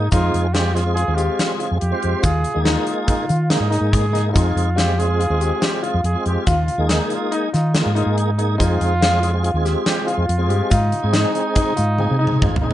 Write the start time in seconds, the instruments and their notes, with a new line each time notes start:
Already playing: flugelhorn D#4
0.11 fingered electric bass F2, tonewheel organ G#3 C4 F4 G#4, grand piano D#4, flugelhorn F4, kick, closed hi-hat, shaker
0.34 fingered electric bass F2, closed hi-hat
0.53 tonewheel organ G#3 C4 F4 G#4, grand piano F4, flugelhorn G4, snare, closed hi-hat
0.74 tonewheel organ G#3 C4 F4 G#4, flugelhorn F4, snare, closed hi-hat, shaker
0.85 tonewheel organ G#3 C4 F4 G#4
0.94 grand piano F4, flugelhorn G#4, closed hi-hat
1.07 fingered electric bass D#2, tonewheel organ G#3 C4 F4 G#4
1.15 flugelhorn F4, grand piano G4, closed hi-hat, shaker
1.39 snare, closed hi-hat, shaker
1.60 grand piano F4, closed hi-hat
1.71 fingered electric bass F2
1.79 fingered electric bass F2, flugelhorn G4, closed hi-hat
1.91 tonewheel organ G#3 C4 F4 C5
2.01 fingered electric bass F2, grand piano G4, closed hi-hat
2.23 fingered electric bass D#2, grand piano F4, flugelhorn G#4, kick, closed hi-hat, shaker
2.44 closed hi-hat
2.54 fingered electric bass D#2, tonewheel organ G#3 A#3 D#4 G#4
2.65 grand piano D#4, flugelhorn F4, snare, closed hi-hat
2.87 closed hi-hat
3.07 grand piano D#4, kick, closed hi-hat
3.29 fingered electric bass D#3, grand piano F4, closed hi-hat, shaker
3.50 tonewheel organ G#3 A#3 D#4 G#4, flugelhorn D#4, snare, closed hi-hat
3.60 fingered electric bass G#2
3.69 tonewheel organ G#3 A#3 D#4 G#4, grand piano D#4, snare, closed hi-hat
3.81 fingered electric bass G#2
3.93 flugelhorn G#4, kick, closed hi-hat
4.11 tonewheel organ G#3 A#3 D#4 G#4, grand piano D#4
4.15 snare, closed hi-hat
4.28 flugelhorn E4
4.32 fingered electric bass F2, tonewheel organ G#3 C4 F4 G#4, grand piano D#4, flugelhorn F4, kick, shaker
4.36 closed hi-hat
4.56 fingered electric bass F2, closed hi-hat
4.75 tonewheel organ G#3 C4 F4 G#4, grand piano F4, flugelhorn G4, snare, closed hi-hat
4.98 tonewheel organ G#3 C4 F4 G#4, flugelhorn G#4, closed hi-hat, shaker
5.08 tonewheel organ G#3 C4 F4 G#4
5.20 grand piano F4, closed hi-hat
5.29 fingered electric bass D#2, tonewheel organ G#3 C4 F4 G#4
5.41 grand piano G4, closed hi-hat, shaker
5.62 flugelhorn G4, snare, closed hi-hat, shaker
5.83 grand piano F4, flugelhorn F4, closed hi-hat
5.94 fingered electric bass F2
6.04 fingered electric bass F2, flugelhorn G#4, closed hi-hat
6.13 tonewheel organ G#3 C4 F4 G#4
6.26 fingered electric bass F2, grand piano G4, flugelhorn G4, closed hi-hat
6.47 fingered electric bass D#2, grand piano F4, flugelhorn F4, kick, closed hi-hat, shaker
6.68 closed hi-hat
6.78 fingered electric bass D#2, tonewheel organ G#3 A#3 D#4 G#4
6.89 grand piano D#4, flugelhorn D#4, snare, closed hi-hat
7.10 flugelhorn F4, closed hi-hat, shaker
7.32 grand piano D#4, flugelhorn D#4, closed hi-hat
7.53 fingered electric bass D#3, flugelhorn D#4, grand piano F4, snare, closed hi-hat, shaker
7.74 tonewheel organ G#3 A#3 D#4 G#4, flugelhorn F4, snare, closed hi-hat
7.86 fingered electric bass G#2
7.94 tonewheel organ G#3 A#3 D#4 G#4, grand piano D#4, flugelhorn F4, closed hi-hat
8.06 fingered electric bass G#2
8.17 flugelhorn D#4, closed hi-hat
8.38 tonewheel organ G#3 A#3 D#4 G#4, grand piano D#4, closed hi-hat
8.58 fingered electric bass F2, tonewheel organ G#3 C4 F4 G#4, grand piano D#4, flugelhorn F4, kick, closed hi-hat, shaker
8.81 fingered electric bass F2, closed hi-hat
9.01 tonewheel organ G#3 C4 F4 G#4, grand piano F4, snare, closed hi-hat
9.21 tonewheel organ G#3 C4 F4 G#4, closed hi-hat, shaker
9.33 tonewheel organ G#3 C4 F4 G#4
9.44 grand piano F4, closed hi-hat
9.54 fingered electric bass D#2, tonewheel organ G#3 C4 F4 G#4
9.65 grand piano G4, snare, closed hi-hat, shaker
9.86 flugelhorn G4, snare, closed hi-hat, shaker
10.07 grand piano F4, flugelhorn F4, closed hi-hat
10.18 fingered electric bass F2
10.29 fingered electric bass F2, closed hi-hat
10.38 tonewheel organ G#3 C4 F4 G#4
10.49 fingered electric bass G2, grand piano G4, closed hi-hat
10.70 fingered electric bass G#2, flugelhorn D#4, grand piano F4, kick, closed hi-hat, shaker
10.92 closed hi-hat
11.02 fingered electric bass G#2, tonewheel organ G#3 C4 D#4 G#4
11.13 grand piano D#4, snare, closed hi-hat
11.35 closed hi-hat, shaker
11.55 grand piano D#4, kick, closed hi-hat
11.76 fingered electric bass G#2, grand piano F4, closed hi-hat, shaker
11.98 tonewheel organ G#3 C4 D#4 G#4, high tom
12.11 fingered electric bass C3
12.19 tonewheel organ G#3 C4 D#4 G#4, grand piano D#4
12.27 mid tom
12.32 fingered electric bass C3
12.42 fingered electric bass G#1, flugelhorn F4, kick, mid tom
12.56 floor tom
12.62 fingered electric bass A#1, tonewheel organ G#3 C4 D#4 G#4, grand piano D#4, flugelhorn D#4